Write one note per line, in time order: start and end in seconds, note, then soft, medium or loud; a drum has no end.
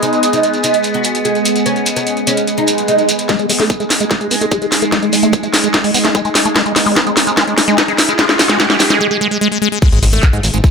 0.00 3.28 G#3 medium
0.00 3.31 B3 medium
0.00 0.24 D#4 loud
0.00 9.01 G#4 medium
0.00 9.01 D#5 medium
0.00 9.01 G#5 medium
0.00 closed hi-hat medium
0.00 shekere soft
0.13 closed hi-hat soft
0.13 shekere soft
0.23 closed hi-hat medium
0.23 shekere medium
0.33 0.54 D#4 medium
0.33 closed hi-hat medium
0.33 shekere soft
0.43 closed hi-hat medium
0.43 shekere medium
0.54 closed hi-hat soft
0.54 shekere soft
0.64 0.85 D#4 loud
0.64 closed hi-hat loud
0.64 shekere medium
0.73 closed hi-hat medium
0.73 shekere soft
0.83 closed hi-hat medium
0.83 shekere medium
0.93 1.16 F#4 medium
0.93 closed hi-hat soft
0.93 shekere soft
1.04 closed hi-hat medium
1.04 shekere medium
1.15 closed hi-hat medium
1.15 shekere soft
1.25 1.39 G#4 medium
1.25 closed hi-hat medium
1.25 shekere soft
1.35 closed hi-hat soft
1.35 shekere soft
1.45 closed hi-hat medium
1.45 shekere medium
1.56 closed hi-hat medium
1.56 shekere soft
1.66 1.87 C#4 loud
1.66 closed hi-hat medium
1.66 shekere soft
1.76 closed hi-hat soft
1.76 shekere soft
1.86 closed hi-hat loud
1.86 shekere medium
1.96 2.18 C#4 medium
1.96 closed hi-hat medium
1.96 shekere soft
2.07 closed hi-hat medium
2.07 shekere medium
2.17 closed hi-hat soft
2.17 shekere soft
2.27 2.48 C#4 loud
2.27 closed hi-hat loud
2.27 shekere medium
2.37 closed hi-hat medium
2.37 shekere soft
2.47 closed hi-hat medium
2.47 swell medium
2.47 shekere medium
2.57 2.79 D#4 medium
2.57 closed hi-hat soft
2.57 shekere soft
2.67 closed hi-hat loud
2.67 shekere medium
2.78 closed hi-hat medium
2.78 shekere soft
2.88 3.02 D#4 medium
2.88 closed hi-hat medium
2.88 shekere medium
2.98 closed hi-hat soft
2.98 shekere soft
3.09 closed hi-hat loud
3.09 shekere medium
3.19 closed hi-hat medium
3.19 shekere soft
3.29 9.01 G#3 medium
3.29 3.36 G#3 loud
3.29 9.01 D#4 medium
3.29 kick loud
3.29 snare soft
3.29 closed hi-hat medium
3.29 riser medium
3.29 shekere medium
3.38 3.46 G#3 medium
3.38 closed hi-hat soft
3.38 shekere soft
3.49 3.52 G#3 medium
3.49 open hi-hat loud
3.49 shekere medium
3.60 3.71 A3 loud
3.60 snare soft
3.60 open hi-hat medium
3.60 shekere soft
3.70 3.75 B3 loud
3.70 kick loud
3.70 closed hi-hat medium
3.70 shekere medium
3.80 3.85 G#3 medium
3.80 closed hi-hat soft
3.80 shekere soft
3.90 snare medium
3.90 open hi-hat loud
3.90 shekere medium
4.00 4.05 G#3 medium
4.00 closed hi-hat medium
4.00 shekere soft
4.11 4.15 G#3 medium
4.11 kick loud
4.11 snare medium
4.11 closed hi-hat medium
4.11 shekere medium
4.21 4.28 G#3 medium
4.21 closed hi-hat soft
4.21 shekere soft
4.31 4.36 B3 medium
4.31 open hi-hat loud
4.31 shekere medium
4.41 4.46 A3 loud
4.41 closed hi-hat medium
4.41 shekere soft
4.51 4.58 G#3 loud
4.51 kick loud
4.51 closed hi-hat medium
4.51 shekere soft
4.62 4.66 G#3 medium
4.62 closed hi-hat soft
4.62 shekere soft
4.72 snare medium
4.72 open hi-hat loud
4.72 shekere medium
4.82 4.85 A3 medium
4.82 closed hi-hat medium
4.82 shekere soft
4.92 4.99 G#3 loud
4.92 kick loud
4.92 snare medium
4.92 closed hi-hat medium
4.92 shekere medium
5.02 5.09 G#3 medium
5.02 closed hi-hat soft
5.02 shekere soft
5.13 5.16 G#3 medium
5.13 open hi-hat loud
5.13 shekere loud
5.23 5.35 A3 loud
5.23 closed hi-hat medium
5.23 shekere soft
5.33 5.38 B3 loud
5.33 kick loud
5.33 closed hi-hat medium
5.33 shekere medium
5.43 5.48 G#3 medium
5.43 closed hi-hat soft
5.43 shekere soft
5.54 snare medium
5.54 open hi-hat loud
5.54 shekere medium
5.63 5.68 G#3 medium
5.63 closed hi-hat medium
5.63 shekere soft
5.73 5.79 G#3 medium
5.73 kick loud
5.73 snare medium
5.73 closed hi-hat medium
5.73 shekere medium
5.84 5.91 G#3 medium
5.84 open hi-hat medium
5.84 shekere soft
5.94 5.99 B3 medium
5.94 open hi-hat loud
5.94 shekere medium
6.04 6.09 A3 loud
6.04 snare medium
6.04 closed hi-hat medium
6.04 shekere soft
6.15 6.22 G#3 loud
6.15 kick loud
6.15 closed hi-hat medium
6.15 shekere medium
6.25 6.30 G#3 medium
6.25 closed hi-hat soft
6.25 shekere soft
6.35 snare medium
6.35 open hi-hat loud
6.35 shekere loud
6.45 6.48 A3 medium
6.45 closed hi-hat medium
6.45 shekere soft
6.56 6.63 G#3 medium
6.56 kick loud
6.56 snare medium
6.56 closed hi-hat medium
6.56 shekere medium
6.65 6.73 G#3 medium
6.65 closed hi-hat soft
6.65 shekere soft
6.76 6.79 G#3 medium
6.76 snare medium
6.76 open hi-hat loud
6.76 shekere medium
6.86 6.96 G#3 loud
6.86 open hi-hat medium
6.86 shekere soft
6.96 7.01 B3 medium
6.96 kick loud
6.96 snare medium
6.96 closed hi-hat medium
6.96 shekere medium
7.07 7.11 G#3 medium
7.07 closed hi-hat soft
7.07 shekere soft
7.17 snare medium
7.17 open hi-hat loud
7.17 shekere loud
7.27 7.32 G#3 medium
7.27 closed hi-hat medium
7.27 shekere soft
7.37 7.44 G#3 loud
7.37 kick loud
7.37 snare medium
7.37 closed hi-hat soft
7.37 shekere medium
7.47 7.54 G#3 medium
7.47 closed hi-hat soft
7.47 shekere soft
7.58 7.60 G#3 medium
7.58 snare medium
7.58 open hi-hat loud
7.58 shekere medium
7.68 7.78 G#3 loud
7.68 closed hi-hat medium
7.68 shekere soft
7.78 7.83 B3 loud
7.78 kick loud
7.78 snare medium
7.78 closed hi-hat medium
7.78 shekere medium
7.88 7.93 G#3 medium
7.88 closed hi-hat soft
7.88 shekere soft
7.98 snare medium
7.98 open hi-hat loud
7.98 shekere medium
8.09 8.13 G#3 medium
8.09 closed hi-hat medium
8.09 shekere soft
8.18 8.26 G#3 loud
8.18 kick loud
8.18 snare loud
8.18 closed hi-hat medium
8.18 shekere medium
8.29 8.36 G#3 medium
8.29 snare medium
8.29 closed hi-hat soft
8.29 shekere soft
8.39 8.42 G#3 medium
8.39 snare medium
8.39 open hi-hat loud
8.39 shekere medium
8.49 8.58 G#3 loud
8.49 snare medium
8.49 closed hi-hat medium
8.49 shekere soft
8.60 8.67 G#3 loud
8.60 kick loud
8.60 snare loud
8.60 closed hi-hat medium
8.60 shekere soft
8.70 8.77 G#3 medium
8.70 snare medium
8.70 closed hi-hat soft
8.70 shekere soft
8.79 8.83 G#3 medium
8.79 snare loud
8.79 open hi-hat loud
8.79 shekere medium
8.90 8.99 G#3 loud
8.90 snare medium
8.90 closed hi-hat medium
8.90 shekere soft
9.01 9.07 G#3 loud
9.11 9.18 G#3 medium
9.21 9.28 G#3 loud
9.31 9.38 G#3 medium
9.41 9.48 G#3 loud
9.52 9.58 G#3 medium
9.62 9.69 G#3 loud
9.72 9.79 G#3 medium
9.82 10.71 G#3 medium
9.82 9.89 G#3 loud
9.82 10.71 D#4 medium
9.82 10.71 G#4 medium
9.82 kick loud
9.82 closed hi-hat medium
9.82 crash loud
9.82 impact medium
9.82 shekere medium
9.92 9.99 G#1 medium
9.92 9.99 G#3 medium
9.92 closed hi-hat soft
9.92 shekere soft
10.03 10.10 G#1 loud
10.03 10.05 G#3 medium
10.03 open hi-hat loud
10.03 shekere medium
10.13 10.20 G#1 medium
10.13 10.24 A3 loud
10.13 10.71 G#5 medium
10.13 open hi-hat medium
10.13 shekere soft
10.22 10.28 B3 loud
10.22 10.71 D#5 medium
10.22 kick loud
10.22 clap loud
10.22 closed hi-hat medium
10.22 shekere medium
10.33 10.40 G#2 medium
10.33 10.38 G#3 medium
10.33 closed hi-hat soft
10.33 shekere soft
10.43 10.50 G#1 medium
10.43 open hi-hat loud
10.43 shekere medium
10.54 10.61 G#1 medium
10.54 10.58 G#3 medium
10.54 closed hi-hat medium
10.54 shekere soft
10.64 10.68 G#3 medium
10.64 kick loud
10.64 closed hi-hat medium
10.64 shekere medium